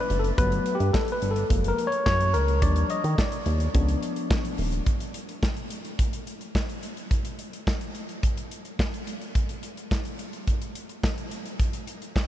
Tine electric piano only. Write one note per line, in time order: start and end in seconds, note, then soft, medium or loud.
0.00 0.34 E3 medium
0.00 0.34 B3 medium
0.00 0.35 D4 medium
0.00 0.20 B4 loud
0.19 0.28 A4 medium
0.38 0.75 F#3 medium
0.38 0.76 A3 medium
0.38 0.76 B3 medium
0.38 0.77 B4 loud
0.75 0.94 G4 medium
0.93 1.11 A4 loud
1.12 1.32 B4 medium
1.31 1.70 A4 medium
1.50 1.87 F3 medium
1.50 1.87 G#3 medium
1.50 1.88 A#3 medium
1.68 1.88 A#4 medium
1.87 2.05 C#5 medium
2.06 2.35 C#5 loud
2.34 2.60 A#4 medium
2.62 2.99 F3 medium
2.62 3.00 G3 medium
2.62 3.00 D4 medium
2.62 2.91 D5 loud
2.90 3.19 D#5 medium
3.19 3.71 D5 medium
3.74 4.82 F3 medium
3.74 4.83 B3 medium
3.74 4.83 D4 medium